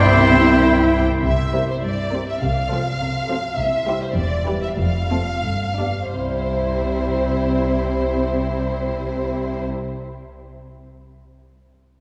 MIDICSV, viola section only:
0, 0, Header, 1, 2, 480
1, 0, Start_track
1, 0, Key_signature, 0, "major"
1, 0, Tempo, 607287
1, 9, Time_signature, 2, 2, 24, 8
1, 1449, Tempo, 587084
1, 3849, Tempo, 652884
1, 4329, Tempo, 685714
1, 8937, End_track
2, 0, Start_track
2, 0, Title_t, "Viola section"
2, 0, Program_c, 0, 48
2, 4, Note_on_c, 0, 60, 71
2, 813, Note_off_c, 0, 60, 0
2, 1211, Note_on_c, 0, 55, 45
2, 1214, Note_on_c, 0, 60, 46
2, 1387, Note_off_c, 0, 55, 0
2, 1389, Note_off_c, 0, 60, 0
2, 1689, Note_on_c, 0, 55, 42
2, 1690, Note_on_c, 0, 60, 42
2, 1869, Note_off_c, 0, 55, 0
2, 1869, Note_off_c, 0, 60, 0
2, 2169, Note_on_c, 0, 60, 46
2, 2170, Note_on_c, 0, 53, 47
2, 2345, Note_off_c, 0, 53, 0
2, 2345, Note_off_c, 0, 60, 0
2, 2647, Note_on_c, 0, 60, 42
2, 2650, Note_on_c, 0, 53, 43
2, 2818, Note_off_c, 0, 60, 0
2, 2820, Note_off_c, 0, 53, 0
2, 3111, Note_on_c, 0, 55, 48
2, 3113, Note_on_c, 0, 64, 46
2, 3289, Note_off_c, 0, 55, 0
2, 3289, Note_off_c, 0, 64, 0
2, 3600, Note_on_c, 0, 55, 46
2, 3600, Note_on_c, 0, 64, 43
2, 3785, Note_off_c, 0, 64, 0
2, 3786, Note_off_c, 0, 55, 0
2, 4092, Note_on_c, 0, 57, 44
2, 4093, Note_on_c, 0, 60, 47
2, 4269, Note_off_c, 0, 57, 0
2, 4270, Note_off_c, 0, 60, 0
2, 4583, Note_on_c, 0, 59, 35
2, 4585, Note_on_c, 0, 55, 34
2, 4763, Note_off_c, 0, 59, 0
2, 4765, Note_off_c, 0, 55, 0
2, 4824, Note_on_c, 0, 60, 34
2, 4827, Note_on_c, 0, 55, 33
2, 7276, Note_off_c, 0, 60, 0
2, 7278, Note_off_c, 0, 55, 0
2, 8937, End_track
0, 0, End_of_file